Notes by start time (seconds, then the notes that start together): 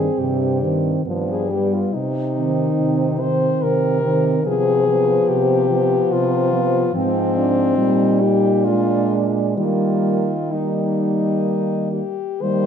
Already playing: C4 G#4
0.19 G2 C3 G4
0.62 D#3 C4
1.06 G2 F3 B3
1.30 G#4
1.49 G3 B3 G4
1.73 F4
1.93 C3 D#4
2.36 D#3 C4
2.79 C3
3.19 D#3 C4 C5
3.62 C3 A#4
4.02 D#3 C4
4.44 C3 F3 B3 G#4
4.85 F3 B3
5.28 C3 G4
5.69 F3 B3
6.11 C3 F4
6.52 F3 B3
6.94 G#2 F3 C4
7.36 D4
7.77 A#2 G3 D#4
8.21 G4
8.65 G#3 D4 F4
9.57 D#3 G3 A#3 F4
10.51 G3 A#3 D#4
11.93 G4
12.42 D#3 G3 A#3 C5